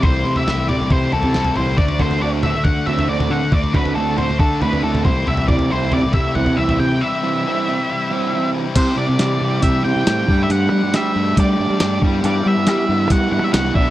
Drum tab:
CC |----------------|----------------|----------------|----------------|
HH |----------------|----------------|----------------|----------------|
SD |----o-------o---|----------------|----------------|----------------|
T2 |------o-------o-|------o------o--|------o------o--|------o------o--|
FT |o--o--o-o-oo-o--|oooo--o-o-oo-o--|oooo--o-o-oo-o--|oooo--o-o-oo-o--|
BD |o-------o-------|o-o-----o-------|o-o-----o-----o-|--o-----o-------|

CC |----------------|x---------------|----------------|----------------|
HH |----------------|x---x---x---x---|x---x---x---x---|x---x---x---x---|
SD |----------------|----o-------o---|----o-------o---|----o-------oo--|
T2 |----------------|----------------|----------------|----------------|
FT |----------------|----------------|----------------|----------------|
BD |----------------|o-------o-----o-|--------o-----o-|--------o-----o-|